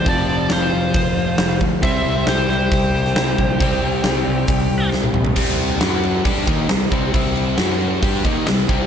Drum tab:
CC |----------------|----------------|----------------|x-x-x-x-x-x-x-x-|
HH |o---o---o---o---|o---o---o---o---|o---o---o-------|----------------|
SD |----o-------o---|----o-o----oo---|----o-------o---|----o-------o---|
T1 |----------------|----------------|-------------o--|----------------|
T2 |----------------|----------------|--------------o-|----------------|
FT |----------------|----------------|---------------o|----------------|
BD |o-------o-----o-|o-------o-----o-|o-------o-------|o-------o-o---o-|

CC |x-x-x-x-x-x-x-x-|
HH |----------------|
SD |----o-------o---|
T1 |----------------|
T2 |----------------|
FT |----------------|
BD |o-------o-o---o-|